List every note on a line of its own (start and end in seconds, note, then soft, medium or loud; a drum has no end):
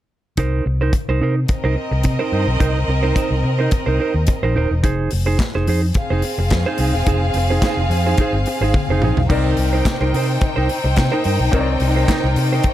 0.37 0.61 C2 medium
0.37 0.63 D#4 medium
0.37 0.64 A#4 medium
0.37 0.65 C5 medium
0.37 kick medium
0.37 closed hi-hat medium
0.66 0.89 C2 medium
0.66 muted clean electric guitar stroke soft
0.81 0.93 D#4 soft
0.81 0.93 A#4 medium
0.81 0.93 C5 medium
0.93 muted clean electric guitar stroke soft
0.93 kick loud
0.93 closed hi-hat medium
1.08 1.19 C2 medium
1.08 1.20 D#4 soft
1.08 1.21 A#4 soft
1.08 1.21 C5 medium
1.21 1.44 C3 medium
1.21 1.39 D#4 medium
1.21 1.36 A#4 medium
1.21 1.35 C5 medium
1.36 muted clean electric guitar stroke soft
1.48 4.80 C4 medium
1.48 4.80 A#4 medium
1.48 4.80 D#5 medium
1.48 muted clean electric guitar stroke soft
1.48 kick loud
1.48 closed hi-hat medium
1.64 1.75 C2 medium
1.64 1.75 D#4 medium
1.64 1.76 A#4 medium
1.64 1.77 C5 medium
1.76 muted clean electric guitar stroke soft
1.91 2.02 C2 medium
1.91 muted clean electric guitar stroke soft
2.04 2.17 C3 medium
2.04 muted clean electric guitar stroke soft
2.04 kick medium
2.04 closed hi-hat medium
2.19 2.32 D#4 medium
2.19 2.33 A#4 medium
2.19 2.33 C5 medium
2.32 2.45 G2 medium
2.32 2.47 D#4 medium
2.32 2.47 A#4 medium
2.32 2.47 C5 medium
2.47 2.58 B1 medium
2.60 2.84 C2 medium
2.60 2.78 D#4 medium
2.60 2.76 A#4 medium
2.60 2.74 C5 medium
2.60 kick loud
2.60 closed hi-hat medium
2.76 muted clean electric guitar stroke soft
2.88 3.11 C2 medium
2.88 muted clean electric guitar stroke soft
3.03 3.15 D#4 soft
3.03 3.16 A#4 medium
3.03 3.15 C5 medium
3.16 3.34 D#4 medium
3.16 3.31 A#4 medium
3.16 3.30 C5 loud
3.16 kick loud
3.16 closed hi-hat medium
3.31 3.42 C2 medium
3.31 muted clean electric guitar stroke soft
3.44 3.67 C3 medium
3.44 muted clean electric guitar stroke soft
3.59 3.71 D#4 soft
3.59 3.72 A#4 soft
3.59 3.71 C5 soft
3.71 muted clean electric guitar stroke soft
3.71 kick loud
3.71 closed hi-hat medium
3.86 3.98 C2 medium
3.86 3.98 D#4 soft
3.86 3.99 A#4 medium
3.86 4.00 C5 medium
4.00 4.14 D#4 medium
4.00 4.14 A#4 medium
4.00 4.13 C5 medium
4.14 4.25 D#2 medium
4.14 muted clean electric guitar stroke soft
4.27 muted clean electric guitar stroke soft
4.27 kick medium
4.27 closed hi-hat medium
4.43 4.54 A#1 medium
4.43 4.54 D#4 soft
4.43 4.55 A#4 medium
4.43 4.55 C5 medium
4.56 4.68 D#1 medium
4.56 4.73 D#4 medium
4.56 4.71 A#4 medium
4.56 4.70 C5 medium
4.71 4.84 E1 medium
4.71 muted clean electric guitar stroke soft
4.83 5.07 F1 loud
4.83 5.09 D#4 medium
4.83 5.10 G#4 medium
4.83 5.10 C5 medium
4.83 kick loud
4.83 closed hi-hat medium
5.11 5.35 F1 loud
5.11 muted clean electric guitar stroke soft
5.11 open hi-hat medium
5.26 5.38 D#4 soft
5.26 5.39 G#4 medium
5.26 5.39 C5 medium
5.39 kick loud
5.39 snare medium
5.39 clap medium
5.39 closed hi-hat medium
5.55 5.66 F1 medium
5.55 5.67 D#4 soft
5.55 5.67 G#4 medium
5.55 5.67 C5 medium
5.67 5.91 F2 medium
5.67 5.85 D#4 medium
5.67 5.82 G#4 medium
5.67 5.81 C5 medium
5.67 open hi-hat medium
5.82 muted clean electric guitar stroke soft
5.94 9.26 C4 medium
5.94 9.26 G#4 medium
5.94 9.26 F5 medium
5.94 muted clean electric guitar stroke soft
5.94 kick loud
5.94 closed hi-hat medium
6.10 6.21 F1 medium
6.10 6.23 D#4 soft
6.10 6.24 G#4 soft
6.10 6.24 C5 medium
6.22 muted clean electric guitar stroke soft
6.22 open hi-hat medium
6.38 6.49 F1 medium
6.38 muted clean electric guitar stroke soft
6.50 6.64 F2 loud
6.50 muted clean electric guitar stroke soft
6.50 kick medium
6.50 snare medium
6.50 clap medium
6.50 closed hi-hat medium
6.66 6.78 D#4 medium
6.66 6.79 G#4 medium
6.66 6.80 C5 medium
6.78 6.91 C2 medium
6.78 6.93 D#4 medium
6.78 6.94 G#4 medium
6.78 6.93 C5 medium
6.78 open hi-hat medium
6.93 7.04 E1 medium
6.93 muted clean electric guitar stroke soft
7.07 7.30 F1 loud
7.07 7.24 D#4 medium
7.07 7.22 G#4 medium
7.07 7.22 C5 medium
7.07 kick medium
7.07 closed hi-hat medium
7.23 muted clean electric guitar stroke soft
7.34 7.57 F1 medium
7.34 muted clean electric guitar stroke soft
7.34 open hi-hat medium
7.50 7.63 D#4 soft
7.50 7.63 G#4 soft
7.50 7.62 C5 medium
7.62 7.81 D#4 medium
7.62 7.79 G#4 medium
7.62 7.78 C5 loud
7.62 kick loud
7.62 snare loud
7.62 clap medium
7.62 closed hi-hat medium
7.77 7.88 F1 medium
7.77 muted clean electric guitar stroke medium
7.90 8.13 F2 medium
7.90 muted clean electric guitar stroke soft
7.90 open hi-hat medium
8.06 8.19 D#4 soft
8.06 8.18 G#4 soft
8.06 8.18 C5 soft
8.18 8.36 D#4 medium
8.18 8.34 G#4 medium
8.18 8.33 C5 medium
8.18 kick medium
8.18 closed hi-hat medium
8.33 8.44 G1 medium
8.33 muted clean electric guitar stroke soft
8.46 muted clean electric guitar stroke soft
8.46 open hi-hat medium
8.61 8.72 G#1 medium
8.61 8.75 D#4 soft
8.61 8.74 G#4 soft
8.61 8.74 C5 medium
8.74 muted clean electric guitar stroke soft
8.74 kick loud
8.74 high tom soft
8.89 9.00 F1 medium
8.89 9.02 D#4 medium
8.89 9.02 G#4 medium
8.89 9.02 C5 medium
9.02 9.14 A#1 medium
9.02 9.20 D#4 medium
9.02 9.18 G#4 medium
9.02 9.17 C5 medium
9.02 mid tom medium
9.17 9.28 B1 medium
9.17 muted clean electric guitar stroke soft
9.17 floor tom medium
9.29 9.53 C2 medium
9.29 11.48 C3 medium
9.29 11.49 C4 medium
9.29 12.74 D#4 medium
9.29 9.56 D#4 medium
9.29 11.49 D#4 medium
9.29 9.56 A#4 medium
9.29 11.49 A#4 medium
9.29 12.74 C5 medium
9.29 9.57 C5 medium
9.29 11.50 D5 medium
9.29 12.74 G5 medium
9.29 kick loud
9.29 crash medium
9.57 9.81 C2 medium
9.57 muted clean electric guitar stroke soft
9.57 open hi-hat medium
9.73 9.85 D#4 medium
9.73 9.86 A#4 medium
9.73 9.85 C5 medium
9.85 kick loud
9.85 snare loud
9.85 clap medium
9.85 closed hi-hat medium
10.00 10.11 C2 medium
10.00 10.13 D#4 soft
10.00 10.14 A#4 medium
10.00 10.13 C5 medium
10.13 10.36 C3 medium
10.13 10.31 D#4 medium
10.13 10.29 A#4 medium
10.13 10.28 C5 medium
10.13 open hi-hat medium
10.29 muted clean electric guitar stroke soft
10.41 muted clean electric guitar stroke soft
10.41 kick loud
10.41 closed hi-hat medium
10.56 10.67 C2 medium
10.56 10.68 D#4 medium
10.56 10.70 A#4 soft
10.56 10.70 C5 medium
10.69 muted clean electric guitar stroke soft
10.69 open hi-hat medium
10.84 10.95 C2 medium
10.84 muted clean electric guitar stroke soft
10.96 11.10 C3 loud
10.96 muted clean electric guitar stroke soft
10.96 kick loud
10.96 snare loud
10.96 clap medium
10.96 closed hi-hat medium
11.12 11.23 D#4 medium
11.12 11.24 A#4 medium
11.12 11.25 C5 medium
11.24 11.37 G2 medium
11.24 11.39 D#4 medium
11.24 11.39 A#4 medium
11.24 11.39 C5 medium
11.24 open hi-hat medium
11.39 11.50 B1 medium
11.39 muted clean electric guitar stroke soft
11.51 11.76 C2 medium
11.51 12.74 C3 medium
11.51 12.74 C4 medium
11.51 12.74 D#4 medium
11.51 11.70 D#4 medium
11.51 12.74 A#4 medium
11.51 11.68 A#4 medium
11.51 11.67 C5 medium
11.51 11.60 C#5 medium
11.51 kick loud
11.51 closed hi-hat medium
11.61 12.74 D5 medium
11.68 muted clean electric guitar stroke soft
11.80 12.03 C2 medium
11.80 muted clean electric guitar stroke soft
11.80 open hi-hat medium
11.96 12.08 D#4 soft
11.96 12.09 A#4 soft
11.96 12.08 C5 medium
12.08 12.26 D#4 medium
12.08 12.25 A#4 medium
12.08 12.24 C5 medium
12.08 kick loud
12.08 snare loud
12.08 clap medium
12.08 closed hi-hat medium
12.24 12.34 C2 medium
12.24 muted clean electric guitar stroke soft
12.36 12.59 C3 medium
12.36 muted clean electric guitar stroke soft
12.36 open hi-hat medium
12.53 12.65 D#4 soft
12.53 12.65 A#4 medium
12.53 12.64 C5 medium
12.64 muted clean electric guitar stroke soft
12.64 kick loud
12.64 closed hi-hat medium